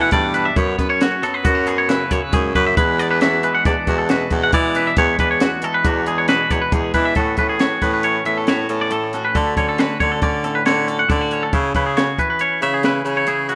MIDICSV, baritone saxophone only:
0, 0, Header, 1, 2, 480
1, 0, Start_track
1, 0, Tempo, 440205
1, 615, Time_signature, 5, 2, 24, 8
1, 6853, Tempo, 436047
1, 14852, End_track
2, 0, Start_track
2, 0, Title_t, "Baritone saxophone"
2, 0, Program_c, 0, 67
2, 133, Note_on_c, 0, 43, 89
2, 557, Note_off_c, 0, 43, 0
2, 612, Note_on_c, 0, 42, 99
2, 825, Note_off_c, 0, 42, 0
2, 857, Note_on_c, 0, 42, 79
2, 1230, Note_off_c, 0, 42, 0
2, 1577, Note_on_c, 0, 42, 85
2, 2211, Note_off_c, 0, 42, 0
2, 2301, Note_on_c, 0, 42, 85
2, 2406, Note_off_c, 0, 42, 0
2, 2538, Note_on_c, 0, 42, 83
2, 2750, Note_off_c, 0, 42, 0
2, 2782, Note_on_c, 0, 42, 97
2, 2992, Note_off_c, 0, 42, 0
2, 3023, Note_on_c, 0, 40, 92
2, 3865, Note_off_c, 0, 40, 0
2, 3984, Note_on_c, 0, 40, 82
2, 4088, Note_off_c, 0, 40, 0
2, 4224, Note_on_c, 0, 40, 88
2, 4644, Note_off_c, 0, 40, 0
2, 4701, Note_on_c, 0, 40, 93
2, 4911, Note_off_c, 0, 40, 0
2, 4940, Note_on_c, 0, 52, 95
2, 5361, Note_off_c, 0, 52, 0
2, 5420, Note_on_c, 0, 40, 99
2, 5630, Note_off_c, 0, 40, 0
2, 5654, Note_on_c, 0, 40, 78
2, 6027, Note_off_c, 0, 40, 0
2, 6377, Note_on_c, 0, 40, 88
2, 7008, Note_off_c, 0, 40, 0
2, 7096, Note_on_c, 0, 40, 79
2, 7202, Note_off_c, 0, 40, 0
2, 7333, Note_on_c, 0, 40, 80
2, 7546, Note_off_c, 0, 40, 0
2, 7578, Note_on_c, 0, 52, 91
2, 7789, Note_off_c, 0, 52, 0
2, 7817, Note_on_c, 0, 45, 84
2, 8029, Note_off_c, 0, 45, 0
2, 8055, Note_on_c, 0, 45, 71
2, 8480, Note_off_c, 0, 45, 0
2, 8540, Note_on_c, 0, 45, 87
2, 8964, Note_off_c, 0, 45, 0
2, 9022, Note_on_c, 0, 45, 80
2, 9445, Note_off_c, 0, 45, 0
2, 9501, Note_on_c, 0, 45, 78
2, 10136, Note_off_c, 0, 45, 0
2, 10229, Note_on_c, 0, 50, 88
2, 10439, Note_off_c, 0, 50, 0
2, 10467, Note_on_c, 0, 50, 75
2, 10889, Note_off_c, 0, 50, 0
2, 10950, Note_on_c, 0, 50, 78
2, 11159, Note_off_c, 0, 50, 0
2, 11187, Note_on_c, 0, 50, 79
2, 11608, Note_off_c, 0, 50, 0
2, 11666, Note_on_c, 0, 50, 86
2, 12087, Note_off_c, 0, 50, 0
2, 12153, Note_on_c, 0, 50, 85
2, 12570, Note_off_c, 0, 50, 0
2, 12631, Note_on_c, 0, 49, 84
2, 12838, Note_off_c, 0, 49, 0
2, 12867, Note_on_c, 0, 49, 80
2, 13286, Note_off_c, 0, 49, 0
2, 13822, Note_on_c, 0, 49, 83
2, 14241, Note_off_c, 0, 49, 0
2, 14294, Note_on_c, 0, 49, 79
2, 14852, Note_off_c, 0, 49, 0
2, 14852, End_track
0, 0, End_of_file